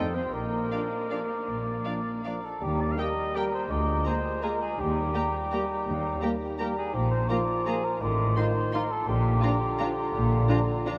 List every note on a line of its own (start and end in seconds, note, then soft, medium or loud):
0.00 0.28 F2 soft
0.00 0.11 G3 soft
0.00 0.11 D#4 soft
0.00 0.16 A4 medium
0.00 0.33 C5 soft
0.00 0.15 A5 medium
0.15 0.23 C4 soft
0.15 0.35 C5 medium
0.15 0.33 C6 medium
0.33 0.66 A#1 soft
0.33 2.22 A#3 soft
0.33 2.25 A#4 medium
0.33 2.09 D5 soft
0.33 2.26 A#5 soft
0.72 0.87 F3 soft
0.72 0.80 D4 soft
0.72 0.87 D4 soft
0.72 0.81 D5 soft
0.72 0.80 F5 soft
1.11 1.25 F3 soft
1.11 1.20 D4 soft
1.11 1.25 D4 soft
1.11 1.19 D5 soft
1.11 1.19 F5 soft
1.48 1.80 A#1 soft
1.85 2.00 F3 soft
1.85 1.94 D4 soft
1.85 2.00 D4 soft
1.85 1.94 D5 soft
1.85 1.93 F5 soft
2.25 2.40 F3 soft
2.25 2.33 D4 soft
2.25 2.40 D4 soft
2.25 2.46 A#4 medium
2.25 2.35 D5 soft
2.25 2.33 F5 soft
2.45 2.65 A4 medium
2.61 2.92 D#2 medium
2.61 2.95 G3 soft
2.61 2.96 G4 soft
2.61 2.82 G4 medium
2.61 2.96 A#5 soft
2.80 2.93 D5 medium
2.91 3.01 F5 soft
2.97 3.34 G3 soft
2.97 3.12 G3 soft
2.97 3.05 A#3 soft
2.97 3.12 A#3 soft
2.97 3.35 G4 soft
2.97 3.06 G4 soft
2.97 3.38 D#5 medium
2.97 3.07 G5 soft
2.97 3.34 A#5 soft
3.34 3.69 G3 soft
3.34 3.49 G3 soft
3.34 3.44 A#3 soft
3.34 3.49 A#3 soft
3.34 3.44 G4 soft
3.34 3.72 G4 soft
3.34 3.53 A#4 medium
3.34 3.44 G5 soft
3.34 3.69 A#5 soft
3.54 3.73 C5 medium
3.69 4.00 D2 medium
3.69 4.41 G#3 medium
3.69 4.42 F4 soft
3.69 4.06 D5 medium
3.69 4.42 A#5 soft
4.06 4.19 G#3 soft
4.06 4.14 A#3 soft
4.06 4.20 A#3 soft
4.06 4.14 G#4 soft
4.06 4.45 C5 medium
4.06 4.14 A#5 soft
4.42 4.80 G#3 soft
4.42 4.56 G#3 soft
4.42 4.55 A#3 soft
4.42 4.52 A#3 soft
4.42 4.80 F4 soft
4.42 4.52 G#4 soft
4.42 4.61 A#4 medium
4.42 4.51 A#5 soft
4.42 4.78 A#5 medium
4.62 4.81 G#4 medium
4.78 5.08 D#2 medium
4.78 5.09 D#2 medium
4.78 6.58 G3 medium
4.78 6.59 D#4 medium
4.78 6.41 G4 medium
4.78 6.31 A#5 soft
5.14 5.28 G3 soft
5.14 5.28 A#3 soft
5.14 5.23 A#3 soft
5.14 5.23 G4 soft
5.14 5.23 A#5 soft
5.52 5.65 G3 soft
5.52 5.60 A#3 soft
5.52 5.65 A#3 soft
5.52 5.61 G4 soft
5.52 5.60 A#5 soft
5.86 6.16 D#2 medium
6.21 6.35 G3 soft
6.21 6.35 A#3 soft
6.21 6.31 A#3 soft
6.21 6.31 G4 soft
6.21 6.30 A#5 soft
6.59 6.96 G3 medium
6.59 6.73 G3 soft
6.59 6.68 A#3 soft
6.59 6.73 A#3 medium
6.59 6.95 D#4 medium
6.59 6.69 G4 soft
6.59 6.76 A#4 medium
6.59 6.67 A#5 soft
6.59 6.92 A#5 medium
6.78 6.95 G#4 medium
6.93 7.24 A#1 medium
6.93 7.24 A#2 medium
6.93 7.28 F3 medium
6.93 7.29 F4 soft
6.93 7.10 G4 medium
6.93 7.29 A#5 medium
7.11 7.31 C5 medium
7.29 8.02 F3 medium
7.29 7.44 F3 medium
7.29 7.44 A#3 medium
7.29 7.39 A#3 soft
7.29 8.00 F4 medium
7.29 7.39 F4 soft
7.29 7.68 D5 medium
7.29 7.38 A#5 soft
7.29 8.01 A#5 medium
7.66 7.81 F3 soft
7.66 7.75 A#3 soft
7.66 7.80 A#3 medium
7.66 7.75 F4 medium
7.66 7.86 G#4 medium
7.66 7.74 A#5 soft
7.85 8.03 A#4 medium
8.01 8.31 A1 medium
8.01 8.31 A2 medium
8.01 8.36 D#3 medium
8.01 8.37 F4 soft
8.01 8.39 D5 medium
8.01 8.36 C6 medium
8.37 8.84 D#3 medium
8.37 8.51 F3 medium
8.37 8.45 D#4 soft
8.37 8.51 D#4 medium
8.37 8.84 F4 medium
8.37 8.46 F4 soft
8.37 8.74 C5 medium
8.37 8.45 C6 soft
8.37 9.07 C6 soft
8.74 8.86 F3 medium
8.74 8.86 D#4 medium
8.74 8.83 D#4 medium
8.74 8.83 F4 medium
8.74 8.93 A#4 medium
8.74 8.82 C6 medium
8.91 9.08 A4 medium
9.08 9.37 A#1 medium
9.08 9.37 A#2 medium
9.08 10.98 D3 medium
9.08 10.98 F4 medium
9.08 10.64 G4 medium
9.08 10.98 A#5 medium
9.43 9.57 F3 medium
9.43 9.52 D4 soft
9.43 9.57 D4 medium
9.43 9.51 F4 medium
9.43 9.51 A#5 soft
9.79 9.93 F3 medium
9.79 9.88 D4 medium
9.79 9.93 D4 medium
9.79 9.88 F4 medium
9.79 9.87 A#5 medium
10.14 10.43 A#1 medium
10.14 10.43 A#2 medium
10.49 10.62 F3 medium
10.49 10.62 D4 medium
10.49 10.57 D4 medium
10.49 10.58 F4 medium
10.49 10.57 A#5 soft
10.86 10.98 F3 medium
10.86 10.98 D4 medium
10.86 10.95 D4 medium
10.86 10.94 F4 medium
10.86 10.95 A#5 medium